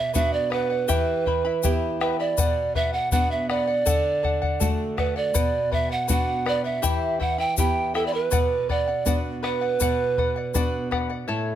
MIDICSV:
0, 0, Header, 1, 6, 480
1, 0, Start_track
1, 0, Key_signature, 2, "minor"
1, 0, Tempo, 742574
1, 575, Time_signature, 2, 2, 24, 8
1, 7467, End_track
2, 0, Start_track
2, 0, Title_t, "Pan flute"
2, 0, Program_c, 0, 75
2, 0, Note_on_c, 0, 76, 83
2, 91, Note_off_c, 0, 76, 0
2, 95, Note_on_c, 0, 76, 86
2, 217, Note_on_c, 0, 74, 82
2, 227, Note_off_c, 0, 76, 0
2, 340, Note_on_c, 0, 71, 99
2, 349, Note_off_c, 0, 74, 0
2, 1097, Note_off_c, 0, 71, 0
2, 1299, Note_on_c, 0, 71, 77
2, 1410, Note_off_c, 0, 71, 0
2, 1421, Note_on_c, 0, 74, 83
2, 1781, Note_on_c, 0, 76, 91
2, 1790, Note_off_c, 0, 74, 0
2, 1897, Note_on_c, 0, 78, 84
2, 1907, Note_off_c, 0, 76, 0
2, 2012, Note_off_c, 0, 78, 0
2, 2016, Note_on_c, 0, 78, 97
2, 2141, Note_on_c, 0, 76, 82
2, 2151, Note_off_c, 0, 78, 0
2, 2257, Note_off_c, 0, 76, 0
2, 2260, Note_on_c, 0, 74, 103
2, 3020, Note_off_c, 0, 74, 0
2, 3220, Note_on_c, 0, 71, 80
2, 3341, Note_on_c, 0, 74, 84
2, 3351, Note_off_c, 0, 71, 0
2, 3704, Note_on_c, 0, 76, 93
2, 3714, Note_off_c, 0, 74, 0
2, 3821, Note_off_c, 0, 76, 0
2, 3824, Note_on_c, 0, 78, 85
2, 3932, Note_off_c, 0, 78, 0
2, 3947, Note_on_c, 0, 78, 95
2, 4189, Note_on_c, 0, 74, 87
2, 4199, Note_off_c, 0, 78, 0
2, 4294, Note_off_c, 0, 74, 0
2, 4297, Note_on_c, 0, 76, 85
2, 4632, Note_off_c, 0, 76, 0
2, 4662, Note_on_c, 0, 78, 93
2, 4780, Note_on_c, 0, 79, 93
2, 4790, Note_off_c, 0, 78, 0
2, 4898, Note_off_c, 0, 79, 0
2, 4902, Note_on_c, 0, 79, 96
2, 5140, Note_on_c, 0, 69, 84
2, 5150, Note_off_c, 0, 79, 0
2, 5211, Note_off_c, 0, 69, 0
2, 5214, Note_on_c, 0, 74, 69
2, 5264, Note_on_c, 0, 71, 83
2, 5274, Note_off_c, 0, 74, 0
2, 5627, Note_on_c, 0, 74, 88
2, 5637, Note_off_c, 0, 71, 0
2, 5928, Note_off_c, 0, 74, 0
2, 6101, Note_on_c, 0, 71, 95
2, 7034, Note_off_c, 0, 71, 0
2, 7467, End_track
3, 0, Start_track
3, 0, Title_t, "Charango"
3, 0, Program_c, 1, 24
3, 0, Note_on_c, 1, 74, 37
3, 0, Note_on_c, 1, 78, 49
3, 84, Note_off_c, 1, 74, 0
3, 87, Note_on_c, 1, 71, 60
3, 89, Note_off_c, 1, 78, 0
3, 92, Note_on_c, 1, 74, 60
3, 97, Note_on_c, 1, 78, 59
3, 315, Note_off_c, 1, 71, 0
3, 323, Note_off_c, 1, 74, 0
3, 323, Note_on_c, 1, 71, 62
3, 326, Note_off_c, 1, 78, 0
3, 331, Note_on_c, 1, 74, 60
3, 334, Note_on_c, 1, 78, 69
3, 444, Note_off_c, 1, 78, 0
3, 449, Note_off_c, 1, 71, 0
3, 452, Note_on_c, 1, 78, 56
3, 453, Note_off_c, 1, 74, 0
3, 460, Note_on_c, 1, 74, 45
3, 566, Note_off_c, 1, 74, 0
3, 568, Note_off_c, 1, 78, 0
3, 569, Note_on_c, 1, 67, 75
3, 571, Note_on_c, 1, 79, 91
3, 572, Note_on_c, 1, 64, 90
3, 574, Note_on_c, 1, 76, 90
3, 578, Note_on_c, 1, 83, 84
3, 807, Note_off_c, 1, 79, 0
3, 812, Note_off_c, 1, 64, 0
3, 813, Note_off_c, 1, 67, 0
3, 813, Note_off_c, 1, 76, 0
3, 815, Note_on_c, 1, 79, 52
3, 817, Note_off_c, 1, 83, 0
3, 820, Note_on_c, 1, 64, 58
3, 821, Note_on_c, 1, 76, 61
3, 824, Note_on_c, 1, 83, 61
3, 927, Note_off_c, 1, 83, 0
3, 935, Note_off_c, 1, 76, 0
3, 935, Note_off_c, 1, 79, 0
3, 935, Note_on_c, 1, 83, 60
3, 938, Note_off_c, 1, 64, 0
3, 942, Note_on_c, 1, 76, 45
3, 945, Note_on_c, 1, 64, 49
3, 1052, Note_off_c, 1, 64, 0
3, 1055, Note_on_c, 1, 79, 61
3, 1056, Note_off_c, 1, 76, 0
3, 1056, Note_off_c, 1, 83, 0
3, 1059, Note_on_c, 1, 64, 69
3, 1064, Note_on_c, 1, 76, 71
3, 1066, Note_on_c, 1, 83, 73
3, 1290, Note_off_c, 1, 79, 0
3, 1295, Note_off_c, 1, 64, 0
3, 1297, Note_off_c, 1, 76, 0
3, 1298, Note_on_c, 1, 79, 65
3, 1301, Note_off_c, 1, 83, 0
3, 1303, Note_on_c, 1, 64, 65
3, 1304, Note_on_c, 1, 76, 65
3, 1310, Note_on_c, 1, 83, 72
3, 1413, Note_off_c, 1, 83, 0
3, 1417, Note_off_c, 1, 79, 0
3, 1418, Note_off_c, 1, 76, 0
3, 1420, Note_off_c, 1, 64, 0
3, 1421, Note_on_c, 1, 83, 50
3, 1425, Note_on_c, 1, 76, 45
3, 1428, Note_on_c, 1, 64, 45
3, 1534, Note_off_c, 1, 64, 0
3, 1536, Note_on_c, 1, 71, 77
3, 1539, Note_off_c, 1, 83, 0
3, 1540, Note_on_c, 1, 74, 81
3, 1541, Note_off_c, 1, 76, 0
3, 1544, Note_on_c, 1, 78, 85
3, 1773, Note_off_c, 1, 71, 0
3, 1779, Note_off_c, 1, 74, 0
3, 1780, Note_on_c, 1, 71, 62
3, 1781, Note_off_c, 1, 78, 0
3, 1786, Note_on_c, 1, 74, 58
3, 1788, Note_on_c, 1, 78, 72
3, 1891, Note_off_c, 1, 78, 0
3, 1899, Note_off_c, 1, 71, 0
3, 1899, Note_on_c, 1, 78, 51
3, 1902, Note_off_c, 1, 74, 0
3, 1910, Note_on_c, 1, 74, 38
3, 2015, Note_off_c, 1, 74, 0
3, 2016, Note_off_c, 1, 78, 0
3, 2018, Note_on_c, 1, 71, 61
3, 2022, Note_on_c, 1, 74, 61
3, 2023, Note_on_c, 1, 78, 66
3, 2251, Note_off_c, 1, 71, 0
3, 2253, Note_off_c, 1, 74, 0
3, 2259, Note_on_c, 1, 71, 69
3, 2261, Note_off_c, 1, 78, 0
3, 2261, Note_on_c, 1, 74, 63
3, 2267, Note_on_c, 1, 78, 70
3, 2367, Note_off_c, 1, 78, 0
3, 2375, Note_on_c, 1, 78, 57
3, 2377, Note_off_c, 1, 74, 0
3, 2378, Note_off_c, 1, 71, 0
3, 2385, Note_on_c, 1, 74, 43
3, 2488, Note_off_c, 1, 74, 0
3, 2491, Note_off_c, 1, 78, 0
3, 2493, Note_on_c, 1, 69, 82
3, 2496, Note_on_c, 1, 74, 76
3, 2499, Note_on_c, 1, 78, 86
3, 2725, Note_off_c, 1, 69, 0
3, 2731, Note_off_c, 1, 74, 0
3, 2733, Note_on_c, 1, 69, 50
3, 2735, Note_off_c, 1, 78, 0
3, 2739, Note_on_c, 1, 74, 60
3, 2743, Note_on_c, 1, 78, 65
3, 2847, Note_off_c, 1, 78, 0
3, 2853, Note_off_c, 1, 74, 0
3, 2854, Note_on_c, 1, 78, 60
3, 2855, Note_off_c, 1, 69, 0
3, 2861, Note_on_c, 1, 74, 48
3, 2973, Note_off_c, 1, 74, 0
3, 2974, Note_on_c, 1, 69, 69
3, 2976, Note_off_c, 1, 78, 0
3, 2981, Note_on_c, 1, 74, 66
3, 2984, Note_on_c, 1, 78, 67
3, 3208, Note_off_c, 1, 69, 0
3, 3212, Note_off_c, 1, 74, 0
3, 3215, Note_on_c, 1, 69, 54
3, 3218, Note_off_c, 1, 78, 0
3, 3220, Note_on_c, 1, 74, 66
3, 3226, Note_on_c, 1, 78, 67
3, 3326, Note_off_c, 1, 78, 0
3, 3333, Note_off_c, 1, 74, 0
3, 3333, Note_on_c, 1, 78, 52
3, 3336, Note_off_c, 1, 69, 0
3, 3341, Note_on_c, 1, 74, 40
3, 3448, Note_off_c, 1, 74, 0
3, 3450, Note_off_c, 1, 78, 0
3, 3453, Note_on_c, 1, 71, 75
3, 3455, Note_on_c, 1, 74, 83
3, 3458, Note_on_c, 1, 78, 87
3, 3686, Note_off_c, 1, 71, 0
3, 3691, Note_off_c, 1, 74, 0
3, 3693, Note_off_c, 1, 78, 0
3, 3694, Note_on_c, 1, 71, 58
3, 3699, Note_on_c, 1, 74, 56
3, 3701, Note_on_c, 1, 78, 65
3, 3801, Note_off_c, 1, 78, 0
3, 3806, Note_off_c, 1, 74, 0
3, 3809, Note_on_c, 1, 78, 54
3, 3814, Note_on_c, 1, 74, 44
3, 3816, Note_off_c, 1, 71, 0
3, 3925, Note_off_c, 1, 74, 0
3, 3928, Note_on_c, 1, 71, 58
3, 3931, Note_off_c, 1, 78, 0
3, 3932, Note_on_c, 1, 74, 60
3, 3938, Note_on_c, 1, 78, 67
3, 4165, Note_off_c, 1, 71, 0
3, 4170, Note_off_c, 1, 74, 0
3, 4173, Note_on_c, 1, 71, 66
3, 4175, Note_off_c, 1, 78, 0
3, 4178, Note_on_c, 1, 74, 64
3, 4182, Note_on_c, 1, 78, 71
3, 4285, Note_off_c, 1, 78, 0
3, 4290, Note_off_c, 1, 74, 0
3, 4293, Note_on_c, 1, 78, 56
3, 4295, Note_off_c, 1, 71, 0
3, 4298, Note_on_c, 1, 74, 48
3, 4406, Note_off_c, 1, 74, 0
3, 4409, Note_off_c, 1, 78, 0
3, 4409, Note_on_c, 1, 67, 78
3, 4412, Note_on_c, 1, 79, 79
3, 4413, Note_on_c, 1, 64, 85
3, 4414, Note_on_c, 1, 83, 89
3, 4415, Note_on_c, 1, 76, 81
3, 4644, Note_off_c, 1, 79, 0
3, 4648, Note_off_c, 1, 64, 0
3, 4649, Note_off_c, 1, 76, 0
3, 4652, Note_off_c, 1, 67, 0
3, 4652, Note_on_c, 1, 79, 58
3, 4653, Note_off_c, 1, 83, 0
3, 4656, Note_on_c, 1, 64, 60
3, 4657, Note_on_c, 1, 76, 56
3, 4661, Note_on_c, 1, 83, 55
3, 4765, Note_off_c, 1, 83, 0
3, 4772, Note_off_c, 1, 76, 0
3, 4772, Note_on_c, 1, 83, 49
3, 4774, Note_off_c, 1, 64, 0
3, 4774, Note_off_c, 1, 79, 0
3, 4780, Note_on_c, 1, 76, 42
3, 4781, Note_on_c, 1, 64, 39
3, 4893, Note_off_c, 1, 64, 0
3, 4894, Note_off_c, 1, 76, 0
3, 4894, Note_off_c, 1, 83, 0
3, 4898, Note_on_c, 1, 79, 57
3, 4900, Note_on_c, 1, 64, 61
3, 4902, Note_on_c, 1, 76, 54
3, 4908, Note_on_c, 1, 83, 67
3, 5126, Note_off_c, 1, 79, 0
3, 5129, Note_off_c, 1, 64, 0
3, 5133, Note_off_c, 1, 76, 0
3, 5134, Note_on_c, 1, 79, 61
3, 5135, Note_off_c, 1, 83, 0
3, 5137, Note_on_c, 1, 64, 59
3, 5141, Note_on_c, 1, 76, 68
3, 5143, Note_on_c, 1, 83, 67
3, 5243, Note_off_c, 1, 83, 0
3, 5248, Note_off_c, 1, 76, 0
3, 5250, Note_off_c, 1, 64, 0
3, 5251, Note_on_c, 1, 83, 51
3, 5255, Note_off_c, 1, 79, 0
3, 5256, Note_on_c, 1, 76, 45
3, 5258, Note_on_c, 1, 64, 45
3, 5369, Note_off_c, 1, 64, 0
3, 5372, Note_on_c, 1, 71, 85
3, 5373, Note_off_c, 1, 83, 0
3, 5375, Note_on_c, 1, 74, 85
3, 5376, Note_off_c, 1, 76, 0
3, 5380, Note_on_c, 1, 78, 94
3, 5609, Note_off_c, 1, 71, 0
3, 5612, Note_off_c, 1, 74, 0
3, 5617, Note_on_c, 1, 71, 52
3, 5618, Note_off_c, 1, 78, 0
3, 5620, Note_on_c, 1, 74, 68
3, 5628, Note_on_c, 1, 78, 63
3, 5728, Note_off_c, 1, 78, 0
3, 5736, Note_off_c, 1, 71, 0
3, 5736, Note_on_c, 1, 78, 54
3, 5738, Note_off_c, 1, 74, 0
3, 5745, Note_on_c, 1, 74, 40
3, 5851, Note_off_c, 1, 74, 0
3, 5854, Note_off_c, 1, 78, 0
3, 5854, Note_on_c, 1, 71, 54
3, 5859, Note_on_c, 1, 74, 72
3, 5862, Note_on_c, 1, 78, 63
3, 6085, Note_off_c, 1, 71, 0
3, 6091, Note_off_c, 1, 74, 0
3, 6093, Note_on_c, 1, 71, 65
3, 6094, Note_off_c, 1, 78, 0
3, 6099, Note_on_c, 1, 74, 59
3, 6101, Note_on_c, 1, 78, 67
3, 6205, Note_off_c, 1, 78, 0
3, 6212, Note_off_c, 1, 74, 0
3, 6213, Note_on_c, 1, 78, 56
3, 6214, Note_off_c, 1, 71, 0
3, 6220, Note_on_c, 1, 74, 45
3, 6334, Note_off_c, 1, 78, 0
3, 6335, Note_off_c, 1, 74, 0
3, 6336, Note_on_c, 1, 71, 75
3, 6342, Note_on_c, 1, 74, 84
3, 6345, Note_on_c, 1, 78, 90
3, 6572, Note_off_c, 1, 71, 0
3, 6575, Note_off_c, 1, 74, 0
3, 6578, Note_off_c, 1, 78, 0
3, 6579, Note_on_c, 1, 71, 60
3, 6582, Note_on_c, 1, 74, 54
3, 6586, Note_on_c, 1, 78, 65
3, 6688, Note_off_c, 1, 78, 0
3, 6696, Note_on_c, 1, 78, 59
3, 6697, Note_off_c, 1, 74, 0
3, 6698, Note_off_c, 1, 71, 0
3, 6705, Note_on_c, 1, 74, 46
3, 6811, Note_off_c, 1, 74, 0
3, 6815, Note_on_c, 1, 71, 63
3, 6816, Note_off_c, 1, 78, 0
3, 6819, Note_on_c, 1, 74, 75
3, 6824, Note_on_c, 1, 78, 68
3, 7045, Note_off_c, 1, 71, 0
3, 7049, Note_off_c, 1, 74, 0
3, 7053, Note_off_c, 1, 78, 0
3, 7053, Note_on_c, 1, 71, 64
3, 7056, Note_on_c, 1, 74, 66
3, 7060, Note_on_c, 1, 78, 74
3, 7164, Note_off_c, 1, 78, 0
3, 7169, Note_off_c, 1, 74, 0
3, 7172, Note_on_c, 1, 78, 60
3, 7175, Note_off_c, 1, 71, 0
3, 7176, Note_on_c, 1, 74, 46
3, 7287, Note_off_c, 1, 74, 0
3, 7289, Note_on_c, 1, 73, 75
3, 7289, Note_on_c, 1, 76, 76
3, 7290, Note_on_c, 1, 64, 72
3, 7292, Note_off_c, 1, 78, 0
3, 7295, Note_on_c, 1, 69, 83
3, 7295, Note_on_c, 1, 81, 83
3, 7467, Note_off_c, 1, 64, 0
3, 7467, Note_off_c, 1, 69, 0
3, 7467, Note_off_c, 1, 73, 0
3, 7467, Note_off_c, 1, 76, 0
3, 7467, Note_off_c, 1, 81, 0
3, 7467, End_track
4, 0, Start_track
4, 0, Title_t, "Nylon-string guitar"
4, 0, Program_c, 2, 24
4, 0, Note_on_c, 2, 47, 66
4, 96, Note_on_c, 2, 59, 49
4, 99, Note_on_c, 2, 62, 44
4, 102, Note_on_c, 2, 66, 53
4, 552, Note_off_c, 2, 47, 0
4, 562, Note_off_c, 2, 59, 0
4, 564, Note_off_c, 2, 62, 0
4, 564, Note_off_c, 2, 66, 0
4, 576, Note_on_c, 2, 52, 59
4, 1057, Note_on_c, 2, 59, 47
4, 1061, Note_on_c, 2, 64, 43
4, 1064, Note_on_c, 2, 67, 56
4, 1511, Note_off_c, 2, 52, 0
4, 1523, Note_off_c, 2, 59, 0
4, 1525, Note_off_c, 2, 64, 0
4, 1526, Note_off_c, 2, 67, 0
4, 1538, Note_on_c, 2, 47, 62
4, 2019, Note_on_c, 2, 59, 52
4, 2022, Note_on_c, 2, 62, 46
4, 2026, Note_on_c, 2, 66, 55
4, 2472, Note_off_c, 2, 47, 0
4, 2484, Note_off_c, 2, 59, 0
4, 2486, Note_off_c, 2, 62, 0
4, 2487, Note_off_c, 2, 66, 0
4, 2497, Note_on_c, 2, 50, 64
4, 2978, Note_on_c, 2, 57, 45
4, 2981, Note_on_c, 2, 62, 41
4, 2985, Note_on_c, 2, 66, 49
4, 3431, Note_off_c, 2, 50, 0
4, 3443, Note_off_c, 2, 57, 0
4, 3445, Note_off_c, 2, 62, 0
4, 3446, Note_off_c, 2, 66, 0
4, 3457, Note_on_c, 2, 47, 58
4, 3937, Note_on_c, 2, 59, 46
4, 3940, Note_on_c, 2, 62, 41
4, 3943, Note_on_c, 2, 66, 52
4, 4391, Note_off_c, 2, 47, 0
4, 4402, Note_off_c, 2, 59, 0
4, 4404, Note_off_c, 2, 62, 0
4, 4405, Note_off_c, 2, 66, 0
4, 4421, Note_on_c, 2, 52, 57
4, 4898, Note_on_c, 2, 59, 47
4, 4901, Note_on_c, 2, 64, 42
4, 4903, Note_on_c, 2, 67, 55
4, 5352, Note_off_c, 2, 52, 0
4, 5362, Note_off_c, 2, 59, 0
4, 5363, Note_off_c, 2, 64, 0
4, 5365, Note_off_c, 2, 67, 0
4, 5382, Note_on_c, 2, 47, 59
4, 5853, Note_on_c, 2, 59, 47
4, 5856, Note_on_c, 2, 62, 43
4, 5859, Note_on_c, 2, 66, 51
4, 6313, Note_off_c, 2, 47, 0
4, 6320, Note_off_c, 2, 59, 0
4, 6321, Note_off_c, 2, 62, 0
4, 6323, Note_off_c, 2, 66, 0
4, 6338, Note_on_c, 2, 47, 57
4, 6814, Note_on_c, 2, 59, 45
4, 6819, Note_on_c, 2, 62, 45
4, 6821, Note_on_c, 2, 66, 48
4, 7273, Note_off_c, 2, 47, 0
4, 7282, Note_off_c, 2, 59, 0
4, 7283, Note_off_c, 2, 62, 0
4, 7286, Note_off_c, 2, 66, 0
4, 7295, Note_on_c, 2, 45, 47
4, 7467, Note_off_c, 2, 45, 0
4, 7467, End_track
5, 0, Start_track
5, 0, Title_t, "Bombo"
5, 99, Note_on_c, 9, 43, 64
5, 163, Note_off_c, 9, 43, 0
5, 336, Note_on_c, 9, 37, 46
5, 400, Note_off_c, 9, 37, 0
5, 577, Note_on_c, 9, 43, 65
5, 642, Note_off_c, 9, 43, 0
5, 819, Note_on_c, 9, 43, 54
5, 883, Note_off_c, 9, 43, 0
5, 1062, Note_on_c, 9, 43, 69
5, 1127, Note_off_c, 9, 43, 0
5, 1302, Note_on_c, 9, 37, 54
5, 1367, Note_off_c, 9, 37, 0
5, 1539, Note_on_c, 9, 43, 79
5, 1603, Note_off_c, 9, 43, 0
5, 1780, Note_on_c, 9, 43, 61
5, 1845, Note_off_c, 9, 43, 0
5, 2016, Note_on_c, 9, 43, 75
5, 2080, Note_off_c, 9, 43, 0
5, 2260, Note_on_c, 9, 37, 55
5, 2324, Note_off_c, 9, 37, 0
5, 2499, Note_on_c, 9, 43, 67
5, 2563, Note_off_c, 9, 43, 0
5, 2742, Note_on_c, 9, 43, 58
5, 2807, Note_off_c, 9, 43, 0
5, 2862, Note_on_c, 9, 43, 53
5, 2927, Note_off_c, 9, 43, 0
5, 2982, Note_on_c, 9, 43, 72
5, 3046, Note_off_c, 9, 43, 0
5, 3220, Note_on_c, 9, 37, 47
5, 3220, Note_on_c, 9, 43, 51
5, 3284, Note_off_c, 9, 37, 0
5, 3284, Note_off_c, 9, 43, 0
5, 3459, Note_on_c, 9, 43, 75
5, 3523, Note_off_c, 9, 43, 0
5, 3699, Note_on_c, 9, 43, 60
5, 3764, Note_off_c, 9, 43, 0
5, 3939, Note_on_c, 9, 43, 67
5, 4003, Note_off_c, 9, 43, 0
5, 4179, Note_on_c, 9, 37, 50
5, 4243, Note_off_c, 9, 37, 0
5, 4420, Note_on_c, 9, 43, 64
5, 4484, Note_off_c, 9, 43, 0
5, 4661, Note_on_c, 9, 43, 54
5, 4726, Note_off_c, 9, 43, 0
5, 4899, Note_on_c, 9, 43, 68
5, 4963, Note_off_c, 9, 43, 0
5, 5140, Note_on_c, 9, 37, 48
5, 5205, Note_off_c, 9, 37, 0
5, 5381, Note_on_c, 9, 43, 78
5, 5445, Note_off_c, 9, 43, 0
5, 5621, Note_on_c, 9, 43, 54
5, 5686, Note_off_c, 9, 43, 0
5, 5860, Note_on_c, 9, 43, 58
5, 5924, Note_off_c, 9, 43, 0
5, 6102, Note_on_c, 9, 37, 37
5, 6167, Note_off_c, 9, 37, 0
5, 6340, Note_on_c, 9, 43, 54
5, 6404, Note_off_c, 9, 43, 0
5, 6579, Note_on_c, 9, 43, 54
5, 6644, Note_off_c, 9, 43, 0
5, 6819, Note_on_c, 9, 43, 60
5, 6884, Note_off_c, 9, 43, 0
5, 7060, Note_on_c, 9, 37, 47
5, 7060, Note_on_c, 9, 43, 43
5, 7125, Note_off_c, 9, 37, 0
5, 7125, Note_off_c, 9, 43, 0
5, 7467, End_track
6, 0, Start_track
6, 0, Title_t, "Drums"
6, 94, Note_on_c, 9, 82, 81
6, 158, Note_off_c, 9, 82, 0
6, 572, Note_on_c, 9, 82, 92
6, 636, Note_off_c, 9, 82, 0
6, 1053, Note_on_c, 9, 82, 83
6, 1118, Note_off_c, 9, 82, 0
6, 1536, Note_on_c, 9, 82, 105
6, 1600, Note_off_c, 9, 82, 0
6, 2016, Note_on_c, 9, 82, 84
6, 2081, Note_off_c, 9, 82, 0
6, 2496, Note_on_c, 9, 82, 92
6, 2561, Note_off_c, 9, 82, 0
6, 2978, Note_on_c, 9, 82, 98
6, 3043, Note_off_c, 9, 82, 0
6, 3456, Note_on_c, 9, 82, 113
6, 3520, Note_off_c, 9, 82, 0
6, 3934, Note_on_c, 9, 82, 99
6, 3999, Note_off_c, 9, 82, 0
6, 4416, Note_on_c, 9, 82, 110
6, 4481, Note_off_c, 9, 82, 0
6, 4894, Note_on_c, 9, 82, 97
6, 4958, Note_off_c, 9, 82, 0
6, 5373, Note_on_c, 9, 82, 90
6, 5437, Note_off_c, 9, 82, 0
6, 5856, Note_on_c, 9, 82, 83
6, 5920, Note_off_c, 9, 82, 0
6, 6335, Note_on_c, 9, 82, 94
6, 6400, Note_off_c, 9, 82, 0
6, 6816, Note_on_c, 9, 82, 82
6, 6881, Note_off_c, 9, 82, 0
6, 7467, End_track
0, 0, End_of_file